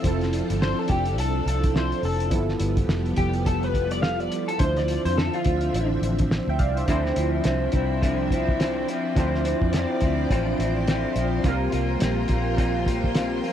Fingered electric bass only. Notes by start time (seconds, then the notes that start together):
0.04 F1
0.50 G1
0.90 F1
1.18 C2
1.46 C2
2.03 F1
2.32 G1
2.60 G1
2.88 F1
3.17 F1
4.60 D2
5.05 F2
5.46 D2
5.74 A1
6.02 A1
6.47 D2
6.60 C2
6.88 D2
7.17 D2
7.45 C2
7.74 C2
9.17 D2
9.61 F2
10.02 D2
10.30 A1
10.59 A1
11.16 A#1
11.44 C2
11.73 C2
12.02 A#1
12.29 A#1